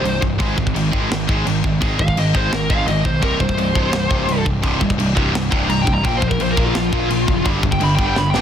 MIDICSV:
0, 0, Header, 1, 5, 480
1, 0, Start_track
1, 0, Key_signature, -3, "minor"
1, 0, Tempo, 353149
1, 541, Time_signature, 4, 2, 24, 8
1, 11435, End_track
2, 0, Start_track
2, 0, Title_t, "Lead electric guitar"
2, 0, Program_c, 0, 29
2, 0, Note_on_c, 0, 72, 103
2, 267, Note_off_c, 0, 72, 0
2, 2722, Note_on_c, 0, 77, 109
2, 2946, Note_off_c, 0, 77, 0
2, 2972, Note_on_c, 0, 75, 89
2, 3191, Note_off_c, 0, 75, 0
2, 3205, Note_on_c, 0, 72, 88
2, 3427, Note_off_c, 0, 72, 0
2, 3443, Note_on_c, 0, 70, 96
2, 3663, Note_on_c, 0, 77, 114
2, 3667, Note_off_c, 0, 70, 0
2, 3891, Note_off_c, 0, 77, 0
2, 3896, Note_on_c, 0, 75, 85
2, 4133, Note_off_c, 0, 75, 0
2, 4146, Note_on_c, 0, 72, 79
2, 4378, Note_off_c, 0, 72, 0
2, 4383, Note_on_c, 0, 70, 96
2, 4630, Note_off_c, 0, 70, 0
2, 4630, Note_on_c, 0, 72, 108
2, 6024, Note_off_c, 0, 72, 0
2, 7749, Note_on_c, 0, 82, 109
2, 7906, Note_off_c, 0, 82, 0
2, 7906, Note_on_c, 0, 79, 94
2, 8060, Note_off_c, 0, 79, 0
2, 8068, Note_on_c, 0, 82, 86
2, 8221, Note_off_c, 0, 82, 0
2, 8226, Note_on_c, 0, 79, 89
2, 8380, Note_off_c, 0, 79, 0
2, 8387, Note_on_c, 0, 72, 86
2, 8539, Note_off_c, 0, 72, 0
2, 8545, Note_on_c, 0, 70, 101
2, 8699, Note_off_c, 0, 70, 0
2, 8722, Note_on_c, 0, 72, 94
2, 8852, Note_off_c, 0, 72, 0
2, 8857, Note_on_c, 0, 70, 87
2, 9015, Note_off_c, 0, 70, 0
2, 9033, Note_on_c, 0, 65, 113
2, 9183, Note_off_c, 0, 65, 0
2, 9199, Note_on_c, 0, 65, 110
2, 10120, Note_off_c, 0, 65, 0
2, 10486, Note_on_c, 0, 79, 114
2, 10628, Note_off_c, 0, 79, 0
2, 10647, Note_on_c, 0, 83, 88
2, 10789, Note_off_c, 0, 83, 0
2, 10803, Note_on_c, 0, 79, 89
2, 10946, Note_off_c, 0, 79, 0
2, 10961, Note_on_c, 0, 79, 105
2, 11105, Note_off_c, 0, 79, 0
2, 11107, Note_on_c, 0, 83, 109
2, 11258, Note_off_c, 0, 83, 0
2, 11282, Note_on_c, 0, 79, 91
2, 11425, Note_off_c, 0, 79, 0
2, 11435, End_track
3, 0, Start_track
3, 0, Title_t, "Distorted electric guitar"
3, 0, Program_c, 1, 30
3, 49, Note_on_c, 1, 36, 86
3, 53, Note_on_c, 1, 43, 84
3, 271, Note_off_c, 1, 36, 0
3, 273, Note_off_c, 1, 43, 0
3, 287, Note_on_c, 1, 36, 70
3, 292, Note_on_c, 1, 43, 92
3, 510, Note_off_c, 1, 36, 0
3, 512, Note_off_c, 1, 43, 0
3, 522, Note_on_c, 1, 44, 87
3, 531, Note_on_c, 1, 51, 97
3, 541, Note_on_c, 1, 56, 101
3, 752, Note_off_c, 1, 51, 0
3, 757, Note_off_c, 1, 44, 0
3, 767, Note_off_c, 1, 56, 0
3, 768, Note_on_c, 1, 51, 90
3, 771, Note_on_c, 1, 44, 71
3, 991, Note_off_c, 1, 51, 0
3, 992, Note_off_c, 1, 44, 0
3, 1013, Note_on_c, 1, 44, 84
3, 1015, Note_on_c, 1, 51, 95
3, 1233, Note_off_c, 1, 44, 0
3, 1234, Note_off_c, 1, 51, 0
3, 1252, Note_on_c, 1, 44, 86
3, 1262, Note_on_c, 1, 51, 102
3, 1270, Note_on_c, 1, 56, 102
3, 1482, Note_off_c, 1, 44, 0
3, 1488, Note_off_c, 1, 51, 0
3, 1492, Note_off_c, 1, 56, 0
3, 1502, Note_on_c, 1, 44, 70
3, 1505, Note_on_c, 1, 51, 91
3, 1718, Note_off_c, 1, 44, 0
3, 1720, Note_off_c, 1, 51, 0
3, 1732, Note_on_c, 1, 44, 86
3, 1745, Note_on_c, 1, 51, 90
3, 1750, Note_on_c, 1, 56, 104
3, 1963, Note_off_c, 1, 44, 0
3, 1969, Note_off_c, 1, 51, 0
3, 1972, Note_off_c, 1, 56, 0
3, 1977, Note_on_c, 1, 44, 78
3, 1985, Note_on_c, 1, 51, 93
3, 2196, Note_off_c, 1, 44, 0
3, 2200, Note_off_c, 1, 51, 0
3, 2231, Note_on_c, 1, 44, 79
3, 2236, Note_on_c, 1, 51, 75
3, 2439, Note_off_c, 1, 44, 0
3, 2445, Note_off_c, 1, 51, 0
3, 2455, Note_on_c, 1, 44, 88
3, 2468, Note_on_c, 1, 51, 100
3, 2480, Note_on_c, 1, 56, 103
3, 2685, Note_off_c, 1, 44, 0
3, 2691, Note_off_c, 1, 51, 0
3, 2697, Note_off_c, 1, 56, 0
3, 2707, Note_on_c, 1, 44, 72
3, 2710, Note_on_c, 1, 51, 81
3, 2921, Note_off_c, 1, 44, 0
3, 2923, Note_off_c, 1, 51, 0
3, 2952, Note_on_c, 1, 44, 71
3, 2959, Note_on_c, 1, 51, 82
3, 3164, Note_off_c, 1, 44, 0
3, 3167, Note_off_c, 1, 51, 0
3, 3182, Note_on_c, 1, 44, 88
3, 3191, Note_on_c, 1, 51, 99
3, 3194, Note_on_c, 1, 56, 97
3, 3402, Note_off_c, 1, 44, 0
3, 3413, Note_off_c, 1, 51, 0
3, 3414, Note_off_c, 1, 56, 0
3, 3419, Note_on_c, 1, 44, 77
3, 3427, Note_on_c, 1, 51, 74
3, 3637, Note_off_c, 1, 44, 0
3, 3642, Note_off_c, 1, 51, 0
3, 3665, Note_on_c, 1, 44, 87
3, 3668, Note_on_c, 1, 51, 95
3, 3682, Note_on_c, 1, 56, 87
3, 3890, Note_off_c, 1, 44, 0
3, 3892, Note_off_c, 1, 51, 0
3, 3898, Note_off_c, 1, 56, 0
3, 3912, Note_on_c, 1, 44, 76
3, 3914, Note_on_c, 1, 51, 83
3, 4124, Note_off_c, 1, 44, 0
3, 4125, Note_off_c, 1, 51, 0
3, 4151, Note_on_c, 1, 44, 65
3, 4152, Note_on_c, 1, 51, 72
3, 4360, Note_off_c, 1, 44, 0
3, 4364, Note_off_c, 1, 51, 0
3, 4366, Note_on_c, 1, 36, 89
3, 4382, Note_on_c, 1, 43, 92
3, 4392, Note_on_c, 1, 48, 99
3, 4595, Note_off_c, 1, 36, 0
3, 4600, Note_off_c, 1, 43, 0
3, 4611, Note_on_c, 1, 36, 78
3, 4613, Note_off_c, 1, 48, 0
3, 4616, Note_on_c, 1, 43, 88
3, 4834, Note_off_c, 1, 36, 0
3, 4836, Note_off_c, 1, 43, 0
3, 4858, Note_on_c, 1, 36, 77
3, 4866, Note_on_c, 1, 43, 90
3, 5077, Note_off_c, 1, 36, 0
3, 5081, Note_off_c, 1, 43, 0
3, 5103, Note_on_c, 1, 36, 84
3, 5110, Note_on_c, 1, 43, 86
3, 5121, Note_on_c, 1, 48, 102
3, 5312, Note_off_c, 1, 36, 0
3, 5325, Note_off_c, 1, 43, 0
3, 5329, Note_on_c, 1, 36, 70
3, 5338, Note_off_c, 1, 48, 0
3, 5341, Note_on_c, 1, 43, 85
3, 5549, Note_off_c, 1, 36, 0
3, 5559, Note_off_c, 1, 43, 0
3, 5565, Note_on_c, 1, 36, 86
3, 5573, Note_on_c, 1, 43, 90
3, 5583, Note_on_c, 1, 48, 99
3, 5785, Note_off_c, 1, 36, 0
3, 5787, Note_off_c, 1, 43, 0
3, 5802, Note_on_c, 1, 36, 88
3, 5804, Note_on_c, 1, 43, 91
3, 5809, Note_off_c, 1, 48, 0
3, 6029, Note_off_c, 1, 36, 0
3, 6030, Note_off_c, 1, 43, 0
3, 6047, Note_on_c, 1, 36, 69
3, 6051, Note_on_c, 1, 43, 78
3, 6271, Note_off_c, 1, 36, 0
3, 6273, Note_off_c, 1, 43, 0
3, 6285, Note_on_c, 1, 36, 97
3, 6296, Note_on_c, 1, 43, 96
3, 6302, Note_on_c, 1, 48, 115
3, 6502, Note_off_c, 1, 36, 0
3, 6515, Note_off_c, 1, 43, 0
3, 6518, Note_on_c, 1, 36, 73
3, 6529, Note_off_c, 1, 48, 0
3, 6531, Note_on_c, 1, 43, 82
3, 6747, Note_off_c, 1, 36, 0
3, 6754, Note_off_c, 1, 43, 0
3, 6771, Note_on_c, 1, 36, 78
3, 6778, Note_on_c, 1, 43, 90
3, 6980, Note_off_c, 1, 36, 0
3, 6988, Note_off_c, 1, 43, 0
3, 6996, Note_on_c, 1, 36, 88
3, 7004, Note_on_c, 1, 43, 93
3, 7020, Note_on_c, 1, 48, 96
3, 7236, Note_off_c, 1, 36, 0
3, 7240, Note_off_c, 1, 43, 0
3, 7247, Note_off_c, 1, 48, 0
3, 7255, Note_on_c, 1, 36, 74
3, 7262, Note_on_c, 1, 43, 83
3, 7469, Note_off_c, 1, 36, 0
3, 7475, Note_off_c, 1, 43, 0
3, 7485, Note_on_c, 1, 36, 97
3, 7492, Note_on_c, 1, 43, 96
3, 7499, Note_on_c, 1, 48, 98
3, 7704, Note_off_c, 1, 43, 0
3, 7705, Note_off_c, 1, 36, 0
3, 7720, Note_on_c, 1, 43, 82
3, 7721, Note_on_c, 1, 36, 83
3, 7727, Note_off_c, 1, 48, 0
3, 7934, Note_off_c, 1, 36, 0
3, 7944, Note_off_c, 1, 43, 0
3, 7950, Note_on_c, 1, 36, 74
3, 7960, Note_on_c, 1, 43, 90
3, 8183, Note_off_c, 1, 36, 0
3, 8187, Note_off_c, 1, 43, 0
3, 8203, Note_on_c, 1, 46, 87
3, 8212, Note_on_c, 1, 53, 98
3, 8215, Note_on_c, 1, 58, 108
3, 8428, Note_off_c, 1, 46, 0
3, 8429, Note_off_c, 1, 53, 0
3, 8445, Note_off_c, 1, 58, 0
3, 8445, Note_on_c, 1, 46, 88
3, 8445, Note_on_c, 1, 53, 81
3, 8669, Note_off_c, 1, 46, 0
3, 8670, Note_off_c, 1, 53, 0
3, 8696, Note_on_c, 1, 46, 75
3, 8698, Note_on_c, 1, 53, 92
3, 8907, Note_off_c, 1, 46, 0
3, 8916, Note_off_c, 1, 53, 0
3, 8923, Note_on_c, 1, 46, 94
3, 8933, Note_on_c, 1, 53, 94
3, 8943, Note_on_c, 1, 58, 104
3, 9154, Note_off_c, 1, 46, 0
3, 9158, Note_off_c, 1, 53, 0
3, 9168, Note_off_c, 1, 58, 0
3, 9170, Note_on_c, 1, 46, 77
3, 9175, Note_on_c, 1, 53, 91
3, 9392, Note_off_c, 1, 46, 0
3, 9394, Note_off_c, 1, 53, 0
3, 9406, Note_on_c, 1, 46, 92
3, 9413, Note_on_c, 1, 53, 105
3, 9417, Note_on_c, 1, 58, 102
3, 9629, Note_off_c, 1, 46, 0
3, 9632, Note_off_c, 1, 53, 0
3, 9644, Note_off_c, 1, 58, 0
3, 9645, Note_on_c, 1, 46, 84
3, 9648, Note_on_c, 1, 53, 84
3, 9869, Note_off_c, 1, 46, 0
3, 9870, Note_off_c, 1, 53, 0
3, 9889, Note_on_c, 1, 46, 81
3, 9899, Note_on_c, 1, 53, 79
3, 10110, Note_off_c, 1, 46, 0
3, 10115, Note_off_c, 1, 53, 0
3, 10124, Note_on_c, 1, 43, 95
3, 10138, Note_on_c, 1, 50, 102
3, 10147, Note_on_c, 1, 55, 109
3, 10343, Note_off_c, 1, 43, 0
3, 10351, Note_off_c, 1, 50, 0
3, 10359, Note_on_c, 1, 43, 80
3, 10367, Note_on_c, 1, 50, 93
3, 10369, Note_off_c, 1, 55, 0
3, 10585, Note_off_c, 1, 43, 0
3, 10589, Note_off_c, 1, 50, 0
3, 10603, Note_on_c, 1, 43, 88
3, 10606, Note_on_c, 1, 50, 96
3, 10827, Note_off_c, 1, 43, 0
3, 10828, Note_off_c, 1, 50, 0
3, 10863, Note_on_c, 1, 43, 88
3, 10874, Note_on_c, 1, 50, 93
3, 10879, Note_on_c, 1, 55, 106
3, 11086, Note_off_c, 1, 43, 0
3, 11091, Note_off_c, 1, 50, 0
3, 11094, Note_off_c, 1, 55, 0
3, 11101, Note_on_c, 1, 43, 72
3, 11107, Note_on_c, 1, 50, 81
3, 11315, Note_off_c, 1, 43, 0
3, 11318, Note_off_c, 1, 50, 0
3, 11340, Note_on_c, 1, 43, 98
3, 11346, Note_on_c, 1, 50, 97
3, 11357, Note_on_c, 1, 55, 104
3, 11435, Note_off_c, 1, 43, 0
3, 11435, Note_off_c, 1, 50, 0
3, 11435, Note_off_c, 1, 55, 0
3, 11435, End_track
4, 0, Start_track
4, 0, Title_t, "Picked electric bass"
4, 0, Program_c, 2, 34
4, 54, Note_on_c, 2, 24, 85
4, 274, Note_off_c, 2, 24, 0
4, 301, Note_on_c, 2, 24, 81
4, 518, Note_off_c, 2, 24, 0
4, 541, Note_on_c, 2, 32, 86
4, 758, Note_off_c, 2, 32, 0
4, 783, Note_on_c, 2, 32, 90
4, 999, Note_off_c, 2, 32, 0
4, 1009, Note_on_c, 2, 32, 85
4, 1449, Note_off_c, 2, 32, 0
4, 1504, Note_on_c, 2, 32, 89
4, 1720, Note_off_c, 2, 32, 0
4, 1749, Note_on_c, 2, 32, 89
4, 1963, Note_off_c, 2, 32, 0
4, 1991, Note_on_c, 2, 32, 88
4, 2204, Note_off_c, 2, 32, 0
4, 2230, Note_on_c, 2, 32, 87
4, 2444, Note_off_c, 2, 32, 0
4, 2472, Note_on_c, 2, 32, 84
4, 2685, Note_off_c, 2, 32, 0
4, 2705, Note_on_c, 2, 32, 97
4, 2921, Note_off_c, 2, 32, 0
4, 2953, Note_on_c, 2, 32, 87
4, 3383, Note_off_c, 2, 32, 0
4, 3436, Note_on_c, 2, 32, 93
4, 3648, Note_off_c, 2, 32, 0
4, 3667, Note_on_c, 2, 32, 91
4, 3883, Note_off_c, 2, 32, 0
4, 3895, Note_on_c, 2, 32, 84
4, 4116, Note_off_c, 2, 32, 0
4, 4144, Note_on_c, 2, 35, 83
4, 4380, Note_off_c, 2, 35, 0
4, 4380, Note_on_c, 2, 24, 89
4, 4599, Note_off_c, 2, 24, 0
4, 4620, Note_on_c, 2, 24, 88
4, 4839, Note_off_c, 2, 24, 0
4, 4852, Note_on_c, 2, 24, 85
4, 5291, Note_off_c, 2, 24, 0
4, 5323, Note_on_c, 2, 24, 89
4, 5550, Note_off_c, 2, 24, 0
4, 5575, Note_on_c, 2, 24, 92
4, 5796, Note_off_c, 2, 24, 0
4, 5810, Note_on_c, 2, 24, 83
4, 6034, Note_off_c, 2, 24, 0
4, 6059, Note_on_c, 2, 24, 85
4, 6278, Note_off_c, 2, 24, 0
4, 6301, Note_on_c, 2, 24, 96
4, 6519, Note_off_c, 2, 24, 0
4, 6537, Note_on_c, 2, 24, 95
4, 6757, Note_off_c, 2, 24, 0
4, 6781, Note_on_c, 2, 24, 86
4, 7216, Note_off_c, 2, 24, 0
4, 7256, Note_on_c, 2, 24, 90
4, 7476, Note_off_c, 2, 24, 0
4, 7505, Note_on_c, 2, 24, 89
4, 7721, Note_off_c, 2, 24, 0
4, 7733, Note_on_c, 2, 24, 98
4, 7954, Note_off_c, 2, 24, 0
4, 7979, Note_on_c, 2, 24, 88
4, 8198, Note_off_c, 2, 24, 0
4, 8217, Note_on_c, 2, 34, 88
4, 8436, Note_off_c, 2, 34, 0
4, 8453, Note_on_c, 2, 34, 92
4, 8674, Note_off_c, 2, 34, 0
4, 8690, Note_on_c, 2, 34, 101
4, 9129, Note_off_c, 2, 34, 0
4, 9177, Note_on_c, 2, 34, 89
4, 9396, Note_off_c, 2, 34, 0
4, 9412, Note_on_c, 2, 34, 92
4, 9633, Note_off_c, 2, 34, 0
4, 9656, Note_on_c, 2, 34, 93
4, 9875, Note_off_c, 2, 34, 0
4, 9899, Note_on_c, 2, 30, 92
4, 10117, Note_off_c, 2, 30, 0
4, 10134, Note_on_c, 2, 31, 94
4, 10353, Note_off_c, 2, 31, 0
4, 10368, Note_on_c, 2, 31, 101
4, 10590, Note_off_c, 2, 31, 0
4, 10616, Note_on_c, 2, 31, 88
4, 11051, Note_off_c, 2, 31, 0
4, 11096, Note_on_c, 2, 31, 98
4, 11313, Note_off_c, 2, 31, 0
4, 11333, Note_on_c, 2, 31, 97
4, 11435, Note_off_c, 2, 31, 0
4, 11435, End_track
5, 0, Start_track
5, 0, Title_t, "Drums"
5, 71, Note_on_c, 9, 49, 57
5, 207, Note_off_c, 9, 49, 0
5, 304, Note_on_c, 9, 36, 90
5, 440, Note_off_c, 9, 36, 0
5, 540, Note_on_c, 9, 49, 54
5, 544, Note_on_c, 9, 36, 104
5, 676, Note_off_c, 9, 49, 0
5, 680, Note_off_c, 9, 36, 0
5, 785, Note_on_c, 9, 36, 83
5, 908, Note_off_c, 9, 36, 0
5, 908, Note_on_c, 9, 36, 81
5, 1031, Note_on_c, 9, 49, 58
5, 1043, Note_off_c, 9, 36, 0
5, 1167, Note_off_c, 9, 49, 0
5, 1268, Note_on_c, 9, 36, 70
5, 1404, Note_off_c, 9, 36, 0
5, 1517, Note_on_c, 9, 49, 64
5, 1518, Note_on_c, 9, 38, 120
5, 1653, Note_off_c, 9, 49, 0
5, 1654, Note_off_c, 9, 38, 0
5, 1752, Note_on_c, 9, 36, 85
5, 1888, Note_off_c, 9, 36, 0
5, 1993, Note_on_c, 9, 49, 68
5, 2129, Note_off_c, 9, 49, 0
5, 2230, Note_on_c, 9, 36, 89
5, 2366, Note_off_c, 9, 36, 0
5, 2470, Note_on_c, 9, 36, 105
5, 2470, Note_on_c, 9, 49, 56
5, 2606, Note_off_c, 9, 36, 0
5, 2606, Note_off_c, 9, 49, 0
5, 2709, Note_on_c, 9, 36, 86
5, 2827, Note_off_c, 9, 36, 0
5, 2827, Note_on_c, 9, 36, 88
5, 2952, Note_on_c, 9, 49, 66
5, 2963, Note_off_c, 9, 36, 0
5, 3088, Note_off_c, 9, 49, 0
5, 3189, Note_on_c, 9, 36, 76
5, 3325, Note_off_c, 9, 36, 0
5, 3434, Note_on_c, 9, 49, 60
5, 3435, Note_on_c, 9, 38, 114
5, 3570, Note_off_c, 9, 49, 0
5, 3571, Note_off_c, 9, 38, 0
5, 3670, Note_on_c, 9, 36, 89
5, 3805, Note_off_c, 9, 36, 0
5, 3909, Note_on_c, 9, 49, 59
5, 4045, Note_off_c, 9, 49, 0
5, 4145, Note_on_c, 9, 36, 86
5, 4281, Note_off_c, 9, 36, 0
5, 4385, Note_on_c, 9, 36, 103
5, 4387, Note_on_c, 9, 49, 57
5, 4520, Note_off_c, 9, 36, 0
5, 4523, Note_off_c, 9, 49, 0
5, 4624, Note_on_c, 9, 36, 83
5, 4743, Note_off_c, 9, 36, 0
5, 4743, Note_on_c, 9, 36, 86
5, 4869, Note_on_c, 9, 49, 57
5, 4879, Note_off_c, 9, 36, 0
5, 5005, Note_off_c, 9, 49, 0
5, 5103, Note_on_c, 9, 36, 74
5, 5238, Note_off_c, 9, 36, 0
5, 5341, Note_on_c, 9, 49, 65
5, 5342, Note_on_c, 9, 38, 126
5, 5476, Note_off_c, 9, 49, 0
5, 5478, Note_off_c, 9, 38, 0
5, 5582, Note_on_c, 9, 36, 88
5, 5717, Note_off_c, 9, 36, 0
5, 5824, Note_on_c, 9, 49, 62
5, 5960, Note_off_c, 9, 49, 0
5, 6063, Note_on_c, 9, 36, 96
5, 6199, Note_off_c, 9, 36, 0
5, 6300, Note_on_c, 9, 36, 105
5, 6302, Note_on_c, 9, 49, 59
5, 6436, Note_off_c, 9, 36, 0
5, 6438, Note_off_c, 9, 49, 0
5, 6538, Note_on_c, 9, 36, 85
5, 6661, Note_off_c, 9, 36, 0
5, 6661, Note_on_c, 9, 36, 84
5, 6789, Note_on_c, 9, 49, 65
5, 6797, Note_off_c, 9, 36, 0
5, 6925, Note_off_c, 9, 49, 0
5, 7025, Note_on_c, 9, 36, 78
5, 7161, Note_off_c, 9, 36, 0
5, 7274, Note_on_c, 9, 49, 64
5, 7276, Note_on_c, 9, 38, 125
5, 7410, Note_off_c, 9, 49, 0
5, 7412, Note_off_c, 9, 38, 0
5, 7503, Note_on_c, 9, 36, 89
5, 7639, Note_off_c, 9, 36, 0
5, 7741, Note_on_c, 9, 49, 61
5, 7877, Note_off_c, 9, 49, 0
5, 7981, Note_on_c, 9, 36, 87
5, 8116, Note_off_c, 9, 36, 0
5, 8215, Note_on_c, 9, 49, 57
5, 8219, Note_on_c, 9, 36, 101
5, 8351, Note_off_c, 9, 49, 0
5, 8355, Note_off_c, 9, 36, 0
5, 8456, Note_on_c, 9, 36, 90
5, 8577, Note_off_c, 9, 36, 0
5, 8577, Note_on_c, 9, 36, 88
5, 8696, Note_on_c, 9, 49, 63
5, 8713, Note_off_c, 9, 36, 0
5, 8832, Note_off_c, 9, 49, 0
5, 8934, Note_on_c, 9, 36, 75
5, 9070, Note_off_c, 9, 36, 0
5, 9175, Note_on_c, 9, 49, 61
5, 9176, Note_on_c, 9, 38, 119
5, 9311, Note_off_c, 9, 49, 0
5, 9312, Note_off_c, 9, 38, 0
5, 9415, Note_on_c, 9, 36, 92
5, 9551, Note_off_c, 9, 36, 0
5, 9657, Note_on_c, 9, 49, 62
5, 9792, Note_off_c, 9, 49, 0
5, 9897, Note_on_c, 9, 36, 99
5, 10033, Note_off_c, 9, 36, 0
5, 10128, Note_on_c, 9, 49, 52
5, 10135, Note_on_c, 9, 36, 105
5, 10264, Note_off_c, 9, 49, 0
5, 10271, Note_off_c, 9, 36, 0
5, 10373, Note_on_c, 9, 36, 98
5, 10494, Note_off_c, 9, 36, 0
5, 10494, Note_on_c, 9, 36, 89
5, 10609, Note_on_c, 9, 49, 67
5, 10630, Note_off_c, 9, 36, 0
5, 10745, Note_off_c, 9, 49, 0
5, 10854, Note_on_c, 9, 36, 78
5, 10990, Note_off_c, 9, 36, 0
5, 11096, Note_on_c, 9, 38, 72
5, 11231, Note_off_c, 9, 38, 0
5, 11336, Note_on_c, 9, 38, 67
5, 11435, Note_off_c, 9, 38, 0
5, 11435, End_track
0, 0, End_of_file